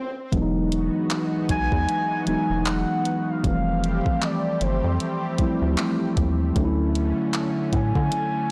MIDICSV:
0, 0, Header, 1, 7, 480
1, 0, Start_track
1, 0, Tempo, 779221
1, 201, Time_signature, 4, 2, 24, 8
1, 5245, End_track
2, 0, Start_track
2, 0, Title_t, "Soft synth lead"
2, 0, Program_c, 0, 80
2, 926, Note_on_c, 0, 80, 127
2, 1648, Note_on_c, 0, 78, 115
2, 1657, Note_off_c, 0, 80, 0
2, 2029, Note_on_c, 0, 77, 110
2, 2038, Note_off_c, 0, 78, 0
2, 2611, Note_on_c, 0, 74, 99
2, 2620, Note_off_c, 0, 77, 0
2, 2849, Note_on_c, 0, 72, 88
2, 2858, Note_off_c, 0, 74, 0
2, 3565, Note_off_c, 0, 72, 0
2, 4773, Note_on_c, 0, 80, 123
2, 5245, Note_off_c, 0, 80, 0
2, 5245, End_track
3, 0, Start_track
3, 0, Title_t, "Analog synth pad"
3, 0, Program_c, 1, 89
3, 198, Note_on_c, 1, 63, 71
3, 199, Note_on_c, 1, 52, 77
3, 199, Note_on_c, 1, 59, 76
3, 199, Note_on_c, 1, 66, 91
3, 200, Note_on_c, 1, 56, 76
3, 2100, Note_off_c, 1, 52, 0
3, 2100, Note_off_c, 1, 63, 0
3, 2101, Note_off_c, 1, 56, 0
3, 2101, Note_off_c, 1, 59, 0
3, 2101, Note_off_c, 1, 66, 0
3, 2120, Note_on_c, 1, 57, 72
3, 2121, Note_on_c, 1, 55, 84
3, 2121, Note_on_c, 1, 60, 76
3, 2121, Note_on_c, 1, 67, 90
3, 4021, Note_off_c, 1, 57, 0
3, 4021, Note_off_c, 1, 60, 0
3, 4021, Note_off_c, 1, 67, 0
3, 4022, Note_off_c, 1, 55, 0
3, 4041, Note_on_c, 1, 61, 72
3, 4042, Note_on_c, 1, 50, 88
3, 4042, Note_on_c, 1, 57, 74
3, 5245, Note_off_c, 1, 50, 0
3, 5245, Note_off_c, 1, 57, 0
3, 5245, Note_off_c, 1, 61, 0
3, 5245, End_track
4, 0, Start_track
4, 0, Title_t, "Tine electric piano"
4, 0, Program_c, 2, 4
4, 197, Note_on_c, 2, 52, 92
4, 202, Note_on_c, 2, 54, 84
4, 206, Note_on_c, 2, 56, 83
4, 211, Note_on_c, 2, 59, 84
4, 216, Note_on_c, 2, 62, 79
4, 255, Note_off_c, 2, 62, 0
4, 257, Note_on_c, 2, 63, 101
4, 297, Control_c, 2, 64, 127
4, 1012, Note_off_c, 2, 52, 0
4, 1014, Note_off_c, 2, 54, 0
4, 1016, Note_off_c, 2, 56, 0
4, 1019, Note_off_c, 2, 59, 0
4, 1042, Note_off_c, 2, 63, 0
4, 1394, Note_on_c, 2, 52, 81
4, 1399, Note_on_c, 2, 54, 71
4, 1404, Note_on_c, 2, 56, 74
4, 1408, Note_on_c, 2, 59, 77
4, 1413, Note_on_c, 2, 63, 85
4, 2017, Note_off_c, 2, 52, 0
4, 2019, Note_off_c, 2, 54, 0
4, 2022, Note_off_c, 2, 56, 0
4, 2024, Note_off_c, 2, 59, 0
4, 2026, Note_off_c, 2, 63, 0
4, 2114, Note_on_c, 2, 53, 80
4, 2119, Note_on_c, 2, 55, 73
4, 2124, Note_on_c, 2, 57, 71
4, 2128, Note_on_c, 2, 60, 69
4, 2129, Control_c, 2, 64, 0
4, 2134, Note_on_c, 2, 52, 88
4, 2236, Control_c, 2, 64, 127
4, 2931, Note_off_c, 2, 53, 0
4, 2933, Note_off_c, 2, 55, 0
4, 2935, Note_off_c, 2, 57, 0
4, 2938, Note_off_c, 2, 60, 0
4, 2941, Note_off_c, 2, 52, 0
4, 3317, Note_on_c, 2, 53, 81
4, 3323, Note_on_c, 2, 55, 76
4, 3327, Note_on_c, 2, 57, 75
4, 3332, Note_on_c, 2, 60, 75
4, 3337, Note_on_c, 2, 64, 88
4, 3938, Note_off_c, 2, 53, 0
4, 3941, Note_off_c, 2, 55, 0
4, 3943, Note_off_c, 2, 57, 0
4, 3946, Note_off_c, 2, 60, 0
4, 3948, Note_off_c, 2, 64, 0
4, 4036, Note_on_c, 2, 50, 92
4, 4042, Note_on_c, 2, 54, 90
4, 4047, Note_on_c, 2, 57, 84
4, 4049, Control_c, 2, 64, 0
4, 4052, Note_on_c, 2, 61, 90
4, 4055, Note_on_c, 2, 63, 81
4, 4094, Note_off_c, 2, 63, 0
4, 4096, Note_on_c, 2, 64, 108
4, 4143, Control_c, 2, 64, 127
4, 4852, Note_off_c, 2, 50, 0
4, 4854, Note_off_c, 2, 54, 0
4, 4857, Note_off_c, 2, 57, 0
4, 4859, Note_off_c, 2, 61, 0
4, 4882, Note_off_c, 2, 64, 0
4, 5245, End_track
5, 0, Start_track
5, 0, Title_t, "Analog synth bass"
5, 0, Program_c, 3, 38
5, 200, Note_on_c, 3, 28, 121
5, 555, Note_off_c, 3, 28, 0
5, 921, Note_on_c, 3, 35, 92
5, 1047, Note_off_c, 3, 35, 0
5, 1060, Note_on_c, 3, 40, 99
5, 1152, Note_off_c, 3, 40, 0
5, 1401, Note_on_c, 3, 28, 47
5, 1456, Note_off_c, 3, 28, 0
5, 1541, Note_on_c, 3, 28, 89
5, 1758, Note_off_c, 3, 28, 0
5, 2120, Note_on_c, 3, 29, 115
5, 2475, Note_off_c, 3, 29, 0
5, 2841, Note_on_c, 3, 31, 103
5, 2967, Note_off_c, 3, 31, 0
5, 2981, Note_on_c, 3, 41, 103
5, 3072, Note_off_c, 3, 41, 0
5, 3320, Note_on_c, 3, 38, 45
5, 3375, Note_off_c, 3, 38, 0
5, 3462, Note_on_c, 3, 38, 106
5, 3552, Note_off_c, 3, 38, 0
5, 3801, Note_on_c, 3, 39, 96
5, 4019, Note_off_c, 3, 39, 0
5, 4040, Note_on_c, 3, 38, 115
5, 4395, Note_off_c, 3, 38, 0
5, 4761, Note_on_c, 3, 45, 93
5, 4887, Note_off_c, 3, 45, 0
5, 4901, Note_on_c, 3, 50, 94
5, 4992, Note_off_c, 3, 50, 0
5, 5245, End_track
6, 0, Start_track
6, 0, Title_t, "Swell"
6, 0, Program_c, 4, 103
6, 0, Note_on_c, 4, 60, 84
6, 200, Note_off_c, 4, 60, 0
6, 5245, End_track
7, 0, Start_track
7, 0, Title_t, "Drums"
7, 200, Note_on_c, 9, 36, 118
7, 201, Note_on_c, 9, 42, 75
7, 261, Note_off_c, 9, 36, 0
7, 262, Note_off_c, 9, 42, 0
7, 444, Note_on_c, 9, 42, 74
7, 505, Note_off_c, 9, 42, 0
7, 680, Note_on_c, 9, 42, 83
7, 681, Note_on_c, 9, 39, 111
7, 742, Note_off_c, 9, 42, 0
7, 743, Note_off_c, 9, 39, 0
7, 919, Note_on_c, 9, 42, 74
7, 920, Note_on_c, 9, 36, 102
7, 981, Note_off_c, 9, 36, 0
7, 981, Note_off_c, 9, 42, 0
7, 1059, Note_on_c, 9, 36, 87
7, 1121, Note_off_c, 9, 36, 0
7, 1162, Note_on_c, 9, 42, 79
7, 1223, Note_off_c, 9, 42, 0
7, 1397, Note_on_c, 9, 42, 72
7, 1459, Note_off_c, 9, 42, 0
7, 1635, Note_on_c, 9, 42, 77
7, 1641, Note_on_c, 9, 39, 107
7, 1697, Note_off_c, 9, 42, 0
7, 1702, Note_off_c, 9, 39, 0
7, 1881, Note_on_c, 9, 42, 75
7, 1943, Note_off_c, 9, 42, 0
7, 2120, Note_on_c, 9, 36, 125
7, 2120, Note_on_c, 9, 42, 75
7, 2181, Note_off_c, 9, 36, 0
7, 2181, Note_off_c, 9, 42, 0
7, 2364, Note_on_c, 9, 42, 76
7, 2425, Note_off_c, 9, 42, 0
7, 2500, Note_on_c, 9, 36, 107
7, 2562, Note_off_c, 9, 36, 0
7, 2600, Note_on_c, 9, 42, 81
7, 2601, Note_on_c, 9, 39, 109
7, 2662, Note_off_c, 9, 42, 0
7, 2663, Note_off_c, 9, 39, 0
7, 2840, Note_on_c, 9, 42, 78
7, 2901, Note_off_c, 9, 42, 0
7, 3081, Note_on_c, 9, 42, 80
7, 3143, Note_off_c, 9, 42, 0
7, 3316, Note_on_c, 9, 42, 76
7, 3319, Note_on_c, 9, 36, 95
7, 3378, Note_off_c, 9, 42, 0
7, 3381, Note_off_c, 9, 36, 0
7, 3555, Note_on_c, 9, 42, 77
7, 3560, Note_on_c, 9, 39, 108
7, 3617, Note_off_c, 9, 42, 0
7, 3622, Note_off_c, 9, 39, 0
7, 3800, Note_on_c, 9, 36, 100
7, 3800, Note_on_c, 9, 42, 74
7, 3861, Note_off_c, 9, 36, 0
7, 3862, Note_off_c, 9, 42, 0
7, 4040, Note_on_c, 9, 36, 125
7, 4040, Note_on_c, 9, 42, 80
7, 4101, Note_off_c, 9, 36, 0
7, 4101, Note_off_c, 9, 42, 0
7, 4284, Note_on_c, 9, 42, 74
7, 4345, Note_off_c, 9, 42, 0
7, 4519, Note_on_c, 9, 42, 84
7, 4520, Note_on_c, 9, 39, 106
7, 4581, Note_off_c, 9, 42, 0
7, 4582, Note_off_c, 9, 39, 0
7, 4760, Note_on_c, 9, 36, 100
7, 4760, Note_on_c, 9, 42, 73
7, 4821, Note_off_c, 9, 42, 0
7, 4822, Note_off_c, 9, 36, 0
7, 4900, Note_on_c, 9, 36, 84
7, 4961, Note_off_c, 9, 36, 0
7, 5000, Note_on_c, 9, 42, 79
7, 5062, Note_off_c, 9, 42, 0
7, 5245, End_track
0, 0, End_of_file